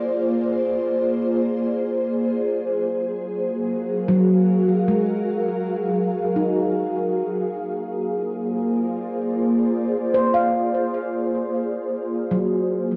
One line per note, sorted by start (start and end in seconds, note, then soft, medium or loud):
0.00 3.24 A#3 medium
0.00 2.46 F4 medium
0.00 12.96 G#4 medium
0.00 3.35 C5 medium
0.00 2.45 D5 medium
2.48 7.27 F#3 medium
2.61 7.27 F#4 medium
3.02 9.18 A#4 medium
3.38 8.98 F5 medium
4.09 5.04 F#3 medium
4.88 8.40 G#3 medium
6.36 7.42 D#4 soft
7.27 12.96 A#3 medium
7.48 12.06 F4 medium
7.76 12.96 C5 medium
8.13 12.05 D5 medium
10.14 12.96 C5 medium
10.34 12.96 F5 medium
12.06 12.96 F#3 medium
12.24 12.96 A#4 medium
12.29 12.96 F#3 medium
12.29 12.96 F#4 medium
12.69 12.96 F5 medium